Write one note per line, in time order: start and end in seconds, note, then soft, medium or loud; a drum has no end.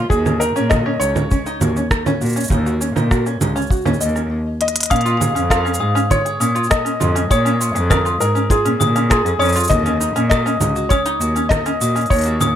0.10 0.48 D#2 medium
0.10 0.24 F#4 medium
0.10 0.41 G#4 medium
0.10 kick medium
0.10 shaker soft
0.26 0.39 C#4 medium
0.26 low conga medium
0.26 shaker soft
0.40 0.54 D#4 medium
0.40 0.71 A#4 medium
0.40 shaker medium
0.56 0.94 A#2 medium
0.56 0.69 C#4 loud
0.56 shaker soft
0.70 0.84 F#4 medium
0.70 0.98 D#5 loud
0.70 kick loud
0.70 cross-stick medium
0.70 low conga medium
0.70 shaker soft
0.86 0.99 C#4 loud
1.00 1.11 C#2 medium
1.00 1.14 D#4 medium
1.00 4.26 C#5 loud
1.00 shaker medium
1.15 1.30 F#4 medium
1.15 low conga medium
1.15 shaker soft
1.31 1.44 C#4 medium
1.31 kick medium
1.31 shaker soft
1.46 1.60 D#4 loud
1.46 shaker soft
1.61 1.71 D#2 medium
1.61 1.74 F#4 medium
1.61 low conga medium
1.61 shaker medium
1.76 1.90 C#4 medium
1.76 shaker soft
1.91 2.04 D#4 medium
1.91 kick medium
1.91 cross-stick loud
1.91 shaker soft
2.06 2.20 C#4 loud
2.06 low conga medium
2.06 shaker soft
2.21 2.42 A#2 medium
2.21 2.35 F#4 medium
2.21 shaker soft
2.25 shaker soft
2.29 shaker soft
2.33 2.49 C#4 medium
2.33 shaker soft
2.36 shaker soft
2.40 shaker medium
2.44 shaker medium
2.48 2.88 D#2 loud
2.48 2.64 D#4 medium
2.48 kick medium
2.48 low conga medium
2.48 shaker medium
2.51 shaker soft
2.66 2.80 F#4 medium
2.66 shaker soft
2.81 2.94 C#4 medium
2.81 shaker medium
2.96 3.34 A#2 loud
2.96 3.09 D#4 medium
2.96 low conga medium
2.96 shaker soft
3.11 3.24 F#4 medium
3.11 kick loud
3.11 cross-stick medium
3.11 shaker soft
3.26 3.39 C#4 medium
3.26 shaker soft
3.41 3.51 C#2 medium
3.41 3.54 D#4 medium
3.41 low conga medium
3.41 shaker medium
3.56 3.69 C#4 loud
3.56 shaker soft
3.61 shaker soft
3.66 shaker soft
3.70 3.84 F#4 medium
3.70 kick loud
3.70 shaker soft
3.76 shaker soft
3.81 shaker soft
3.85 3.96 D#2 medium
3.85 3.99 C#4 loud
3.85 low conga medium
3.85 shaker soft
3.94 shaker soft
4.01 4.31 D#2 medium
4.01 4.14 D#5 medium
4.01 shaker medium
4.15 4.29 C#4 medium
4.15 cross-stick soft
4.15 shaker soft
4.61 4.89 D#5 medium
4.61 closed hi-hat medium
4.68 closed hi-hat medium
4.76 closed hi-hat medium
4.81 closed hi-hat medium
4.83 closed hi-hat medium
4.86 closed hi-hat soft
4.90 5.29 A#2 loud
4.90 5.04 C#4 medium
4.90 5.47 F5 loud
4.90 5.19 D#6 loud
4.90 kick medium
4.90 closed hi-hat soft
4.90 open hi-hat medium
4.90 shaker soft
4.96 closed hi-hat soft
5.01 closed hi-hat soft
5.05 5.19 F4 loud
5.05 open hi-hat soft
5.05 shaker soft
5.20 5.34 G#4 medium
5.20 low conga medium
5.20 shaker medium
5.35 5.74 F2 medium
5.35 5.49 C#4 medium
5.35 open hi-hat soft
5.35 shaker soft
5.50 5.64 F4 medium
5.50 6.07 F5 loud
5.50 kick medium
5.50 cross-stick loud
5.50 open hi-hat medium
5.50 shaker soft
5.65 5.79 C#4 loud
5.65 shaker soft
5.74 shaker medium
5.80 5.92 G#2 medium
5.80 5.94 G#4 medium
5.80 6.09 D#6 medium
5.95 6.09 C#4 loud
5.95 shaker soft
6.10 6.24 F4 medium
6.10 6.67 C#5 loud
6.10 kick loud
6.10 open hi-hat medium
6.10 low conga medium
6.10 shaker soft
6.25 6.40 G#4 medium
6.25 open hi-hat soft
6.40 6.51 A#2 medium
6.40 6.54 C#4 medium
6.40 6.69 D#6 medium
6.40 shaker medium
6.55 6.69 F4 medium
6.55 open hi-hat soft
6.64 shaker soft
6.70 6.84 G#4 medium
6.70 7.32 D#5 loud
6.70 kick medium
6.70 cross-stick loud
6.70 open hi-hat medium
6.70 shaker soft
6.85 6.99 C#4 medium
6.85 open hi-hat soft
6.85 shaker soft
7.00 7.22 F2 medium
7.00 7.14 F4 medium
7.00 low conga medium
7.00 shaker medium
7.15 7.29 C#4 medium
7.15 open hi-hat soft
7.15 shaker soft
7.30 7.69 A#2 loud
7.30 7.44 G#4 medium
7.30 7.93 C#5 loud
7.30 7.59 D#6 medium
7.30 kick loud
7.30 open hi-hat medium
7.30 shaker soft
7.45 7.59 C#4 loud
7.45 open hi-hat soft
7.45 shaker soft
7.60 7.74 F4 medium
7.60 shaker medium
7.75 8.13 F2 loud
7.75 7.90 G#4 medium
7.75 open hi-hat soft
7.75 shaker soft
7.90 8.04 C#4 medium
7.90 7.97 A#4 medium
7.90 8.19 D#6 medium
7.90 kick loud
7.90 cross-stick loud
7.90 open hi-hat medium
7.90 low conga medium
7.90 shaker soft
8.05 8.19 F4 loud
8.05 shaker soft
8.20 8.31 G#2 medium
8.20 8.34 G#4 medium
8.20 8.51 A#4 medium
8.20 shaker medium
8.35 8.49 C#4 medium
8.35 shaker soft
8.50 8.64 F4 medium
8.50 9.07 G#4 medium
8.50 kick loud
8.50 open hi-hat medium
8.50 shaker soft
8.65 8.76 A#2 medium
8.65 8.79 C#4 medium
8.65 open hi-hat soft
8.80 9.24 A#2 loud
8.80 8.94 G#4 medium
8.80 9.09 D#6 medium
8.80 low conga medium
8.80 shaker medium
8.96 9.09 C#4 loud
8.96 cross-stick soft
8.96 open hi-hat soft
8.96 shaker soft
9.10 9.24 F4 medium
9.10 9.38 G#4 loud
9.10 kick loud
9.10 cross-stick loud
9.10 open hi-hat medium
9.10 shaker soft
9.25 9.36 F2 medium
9.25 9.40 G#4 medium
9.25 open hi-hat soft
9.25 shaker soft
9.39 9.51 F2 loud
9.39 9.54 C#4 medium
9.39 9.68 C#5 loud
9.39 9.69 D#6 loud
9.39 shaker soft
9.45 shaker soft
9.49 shaker soft
9.52 9.69 F4 loud
9.52 open hi-hat soft
9.52 shaker medium
9.56 shaker medium
9.60 shaker medium
9.64 shaker medium
9.67 10.08 D#2 loud
9.67 9.84 F#4 medium
9.67 10.26 D#5 loud
9.67 kick loud
9.67 open hi-hat medium
9.67 low conga medium
9.67 shaker medium
9.71 shaker soft
9.86 9.99 C#4 medium
9.86 open hi-hat soft
9.86 shaker soft
10.00 10.14 D#4 medium
10.00 shaker medium
10.15 10.53 A#2 loud
10.15 10.29 C#4 loud
10.15 open hi-hat soft
10.15 shaker soft
10.30 10.44 F#4 medium
10.30 10.92 D#5 medium
10.30 10.60 D#6 medium
10.30 kick loud
10.30 cross-stick loud
10.30 open hi-hat medium
10.30 shaker soft
10.46 10.59 C#4 loud
10.46 shaker soft
10.60 10.71 C#2 medium
10.60 10.74 D#4 medium
10.60 low conga medium
10.60 shaker medium
10.76 10.90 F#4 medium
10.76 shaker soft
10.89 11.04 C#4 medium
10.89 11.52 C#5 medium
10.89 11.19 D#6 loud
10.89 kick loud
10.89 open hi-hat medium
10.89 shaker soft
11.06 11.19 D#4 loud
11.06 open hi-hat soft
11.20 11.31 D#2 medium
11.20 11.34 F#4 medium
11.20 shaker medium
11.36 11.49 C#4 medium
11.36 open hi-hat soft
11.36 shaker soft
11.49 11.64 D#4 medium
11.49 12.12 D#5 loud
11.49 kick loud
11.49 cross-stick loud
11.49 open hi-hat medium
11.49 low conga medium
11.49 shaker medium
11.66 11.79 C#4 loud
11.66 open hi-hat soft
11.66 shaker soft
11.81 12.02 A#2 medium
11.81 11.94 F#4 medium
11.81 12.10 D#6 medium
11.81 shaker medium
11.95 12.09 C#4 loud
11.95 open hi-hat soft
11.95 shaker soft
12.01 open hi-hat soft
12.06 open hi-hat soft
12.10 12.49 D#2 loud
12.10 12.24 D#4 medium
12.10 12.56 C#5 loud
12.10 kick loud
12.10 open hi-hat soft
12.10 shaker soft
12.14 open hi-hat soft
12.16 open hi-hat soft
12.19 open hi-hat soft
12.21 open hi-hat soft
12.24 12.40 F#4 medium
12.24 open hi-hat medium
12.26 open hi-hat soft
12.26 shaker soft
12.40 12.54 C#4 medium
12.40 12.56 D#6 loud
12.40 low conga medium
12.40 shaker medium